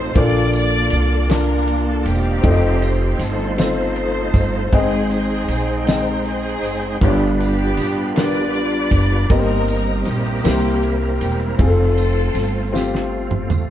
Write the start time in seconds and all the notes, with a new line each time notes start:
Already playing: A1 A3 C4 D#4 F4 A4 C5
0.15 A#1 A#2 A#3 D4 F4 A4 D5, kick, ride
0.19 F4 D5
0.53 F4 A4 D5, ride, tambourine
0.90 C2, ride, tambourine
1.28 A#3 D4 F4 A#4 D5 A5, snare, ride, tambourine
1.68 ride
1.88 A4
2.05 E1 C4 D#4 G4, ride, tambourine
2.41 F1 C4 D#4 F4 A4 D5, kick, ride
2.45 A3 D#4 F4 C5
2.51 D#5
2.82 ride, tambourine
3.03 G4
3.19 G1 A4, snare, ride, tambourine
3.57 C4 D#4 F4 A4 C5, snare, ride, tambourine
3.96 ride
4.34 G1, kick, ride, tambourine
4.72 G#1 G#2 G#3 B3 C4 D#4 G#4 C5 D#5 G5, kick, ride
4.78 C4
5.11 C4 D#4 G#4, ride, tambourine
5.48 A#1, ride, tambourine
5.86 C4 D#4 G#4 A#4 D#5 G5, snare, ride, tambourine
6.26 C4 D#4 G#4, ride
6.63 F#1, ride, tambourine
7.01 G1 G2 G3 B3 D4 F4 G4 A4 C#5, kick, ride
7.09 B4 D5
7.40 B3 D4 G4, ride, tambourine
7.77 A1, snare, ride, tambourine
8.14 B3 D4 F4 G4 A#4 B4 D5, snare, ride, tambourine
8.19 F4
8.24 B4
8.54 ride
8.91 F#1, kick, ride, tambourine
9.30 G1 G2 G3 A#3 C4 D#4 G4 A#4 B4 D#5, kick, ride
9.39 C5
9.68 A#4, ride, tambourine
10.05 A#1 A#3 E4 G4, ride, tambourine
10.43 C2 C3 G3 A#3 C4 E4 G4 A#4, snare, ride, tambourine
10.53 C5
10.83 ride
11.20 E1 G4, ride, tambourine
11.58 F1 A3 C4 F4 G#4 A4, kick, ride
11.62 C4
11.67 A4
11.97 ride, tambourine
12.34 G1, snare, ride, tambourine
12.72 C4 F4 G4, snare, tambourine
12.95 snare
13.31 mid tom
13.50 A1, floor tom, tambourine